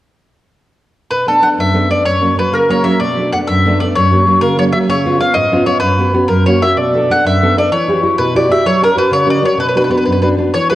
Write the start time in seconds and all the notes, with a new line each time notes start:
1.11 B2 B4
1.27 A3 B3 D4 A4
1.42 A3 B3 D4 F#5
1.58 F#2 E5
1.74 A3 B3 D4
1.90 A3 B3 D4 D5
2.05 F#2 C#5
2.21 F#3 A#3 C#4
2.36 F#3 A#3 C#4 B4
2.52 C#3 A#4
2.69 F#3 A#3 C#4 C#5
2.84 F#3 A#3 C#4 E5
3.00 B2 D5
3.17 A3 B3 D4
3.33 A3 B3 D4 F#5
3.47 F#2 E5
3.65 A3 B3 D4
3.80 A3 B3 D4 D5
3.95 F#2 C#5
4.11 F#3 A#3 C#4
4.26 F#3 A#3 C#4
4.41 C#3 A#4
4.57 F#3 A#3 C#4 C#5
4.72 F#3 A#3 C#4 E5
4.89 C#3 C#5
5.05 B3 C#4 F4
5.19 B3 C#4 F4 F5
5.34 G#2 D#5
5.52 B3 C#4 F4
5.66 B3 C#4 F4 C#5
5.80 F#2 B4
5.99 B3 C#4 F#4
6.14 B3 C#4 F#4
6.28 F#2 A#4
6.46 A#3 C#4 F#4 C#5
6.62 A#3 C#4 F#4 E5
6.77 B2 D5
6.94 B3 D4 A4
7.10 B3 D4 A4 F#5
7.25 F#2 E5
7.42 B3 D4 A4
7.56 B3 D4 A4 D5
7.72 E3 C#5
7.88 E4 F#4 G4
8.03 E4 F#4 G4
8.18 B2 B4
8.35 E4 F#4 G4 D5
8.49 E4 F#4 G4 E5
8.65 F#3 C#5
8.82 C#4 F#4 A#4
8.96 C#4 F#4 A#4 B4
9.11 C#3 C#5
9.27 C#4 F#4 A#4 D5
9.42 C#4 F#4 A#4 C#5
9.57 B2 B4
9.69 B4
9.75 B3 D4 F#4 B4
9.84 B4
9.90 B3 D4 F#4 B4
9.98 B4
10.06 F#2 B4
10.12 B4
10.22 B3 D4 F#4 B4
10.38 B3 D4 F#4
10.54 E3 C#5
10.70 E4 F#4 G#4 B4